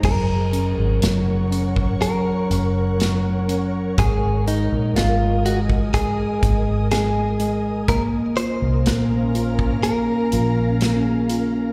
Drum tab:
CC |x---------------|----------------|----------------|
HH |--x-x-x-x-x-x-x-|x-x-x-x-x-x-x-x-|x-x-x-x-x-x-x-x-|
SD |----o-------o---|----o-------o---|----o-------o---|
BD |o------o--------|o------oo-o-----|o------o--------|